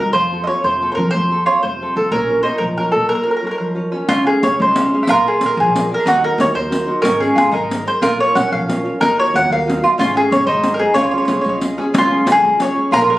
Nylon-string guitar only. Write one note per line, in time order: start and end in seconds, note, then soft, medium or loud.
0.00 0.12 D#4 soft
0.00 0.12 F#4 soft
0.00 0.12 A#4 soft
0.14 0.47 F3 medium
0.32 0.46 C4 soft
0.32 0.47 F4 soft
0.32 0.47 A4 soft
0.47 0.75 C4 soft
0.47 0.75 F4 soft
0.47 0.76 A4 soft
0.65 0.97 C3 soft
0.81 0.97 C4 soft
0.81 0.97 F4 soft
0.81 0.98 A4 soft
0.98 1.25 C4 soft
0.98 1.25 F4 soft
0.98 1.26 A4 soft
1.15 1.47 F3 soft
1.31 1.46 C4 soft
1.31 1.46 F4 soft
1.31 1.47 A4 soft
1.47 1.74 C4 soft
1.47 1.74 F4 soft
1.47 1.74 A4 soft
1.64 1.96 C3 soft
1.81 1.95 C4 soft
1.81 1.96 F4 soft
1.81 1.97 A4 soft
1.96 2.09 C4 soft
1.96 2.10 F4 soft
1.96 2.10 A4 soft
2.12 2.44 A#3 medium
2.29 2.43 F4 soft
2.29 2.44 A#4 soft
2.29 2.45 C#5 soft
2.45 2.71 F4 soft
2.45 2.72 A#4 soft
2.45 2.72 C#5 soft
2.61 2.93 F3 soft
2.79 2.91 F4 soft
2.79 2.93 A#4 soft
2.79 2.92 C#5 soft
2.93 3.20 F4 soft
2.93 3.21 A#4 soft
2.93 3.20 C#5 soft
3.09 3.42 A#3 medium
3.27 3.41 F4 soft
3.27 3.41 A#4 soft
3.27 3.42 C#5 soft
3.42 3.70 F4 soft
3.42 3.70 A#4 soft
3.42 3.71 C#5 soft
3.60 3.92 F3 soft
3.75 3.91 F4 soft
3.75 3.92 A#4 soft
3.75 3.92 C#5 soft
3.93 4.06 F4 soft
3.93 4.06 A#4 soft
3.93 4.06 C#5 soft
4.09 4.42 C#4 soft
4.27 4.41 G#4 soft
4.27 4.42 C#5 soft
4.27 4.42 F5 soft
4.42 4.69 G#4 soft
4.42 4.70 C#5 soft
4.42 4.70 F5 medium
4.59 4.91 G#3 medium
4.77 5.03 C#4 soft
4.77 4.92 G#4 soft
4.77 4.93 F5 medium
4.94 5.06 G#4 soft
4.94 5.06 C#5 soft
4.94 5.06 F5 medium
5.10 5.41 A#3 medium
5.26 5.40 G#4 soft
5.26 5.40 A#4 soft
5.26 5.41 D5 soft
5.41 5.68 G#4 medium
5.41 5.68 A#4 soft
5.41 5.68 D5 soft
5.58 5.89 F3 medium
5.75 5.89 G#4 medium
5.75 5.90 A#4 soft
5.75 5.90 D5 medium
5.90 6.03 G#4 soft
5.90 6.03 A#4 medium
5.90 6.03 D5 medium
6.07 6.38 D#3 medium
6.23 6.37 D#4 soft
6.23 6.38 F#4 soft
6.23 6.38 A#4 soft
6.38 6.65 D#4 medium
6.38 6.65 F#4 medium
6.38 6.65 A#4 medium
6.54 6.86 A#3 medium
6.70 6.85 D#4 soft
6.70 6.86 F#4 soft
6.70 6.87 A#4 medium
6.86 6.99 D#4 soft
6.86 7.00 F#4 soft
6.86 7.00 A#4 medium
7.04 7.36 G#3 medium
7.21 7.35 C#4 soft
7.21 7.37 F4 soft
7.21 7.37 G#4 medium
7.36 7.49 C#4 soft
7.36 7.50 F4 soft
7.36 7.50 G#4 medium
7.54 7.86 G#3 medium
7.71 7.84 G#4 soft
7.71 7.85 A#4 soft
7.71 7.85 C5 soft
7.85 7.98 G#4 soft
7.85 7.99 A#4 soft
7.85 7.99 C5 soft
8.01 8.34 A#3 medium
8.17 8.34 F4 soft
8.17 8.34 A#4 soft
8.17 8.35 C#5 medium
8.35 8.62 F4 soft
8.35 8.62 A#4 soft
8.35 8.63 C#5 medium
8.51 8.84 F3 soft
8.68 8.84 F4 soft
8.68 8.84 A#4 soft
8.68 8.84 C#5 medium
8.85 8.98 F4 soft
8.85 8.98 A#4 soft
8.85 8.98 C#5 soft
9.01 9.33 D#3 medium
9.19 9.33 D#4 soft
9.19 9.34 F4 soft
9.19 9.34 F#4 medium
9.35 9.61 D#4 soft
9.35 9.61 F4 soft
9.35 9.62 F#4 soft
9.51 9.82 A#3 medium
9.67 9.81 D#4 medium
9.67 9.82 F4 soft
9.67 9.82 F#4 medium
9.82 9.95 D#4 medium
9.82 9.96 F4 soft
9.82 9.96 F#4 medium
9.99 10.31 G#3 medium
10.15 10.30 C#4 medium
10.15 10.29 D#4 soft
10.15 10.30 G#4 medium
10.31 10.44 C#4 medium
10.31 10.44 D#4 soft
10.31 10.44 G#4 medium
10.47 10.79 G#3 medium
10.63 10.78 D#4 soft
10.63 10.78 G#4 medium
10.63 10.79 C5 medium
10.79 10.93 D#4 soft
10.79 10.93 G#4 soft
10.79 10.93 C5 medium
10.94 11.28 C#3 medium
11.12 11.27 C#4 soft
11.12 11.28 F4 soft
11.12 11.28 G#4 soft
11.28 11.55 C#4 soft
11.28 11.56 F4 soft
11.28 11.56 G#4 medium
11.44 11.77 G#3 medium
11.61 11.77 C#4 soft
11.61 11.77 F4 soft
11.61 11.78 G#4 soft
11.78 11.91 C#4 soft
11.78 11.91 F4 soft
11.78 11.92 G#4 medium
11.94 12.27 C#3 medium
12.12 12.25 C#4 soft
12.12 12.26 F4 soft
12.12 12.26 G#4 medium
12.26 12.54 C#4 medium
12.26 12.54 F4 medium
12.26 12.55 G#4 medium
12.42 12.75 G#3 medium
12.59 12.74 C#4 medium
12.59 12.74 F4 soft
12.59 12.75 G#4 medium
12.75 12.89 C#4 soft
12.75 12.89 F4 soft
12.75 12.89 G#4 medium
12.91 13.19 A#3 medium
13.09 13.19 G#4 medium
13.09 13.19 A#4 soft
13.09 13.19 D5 medium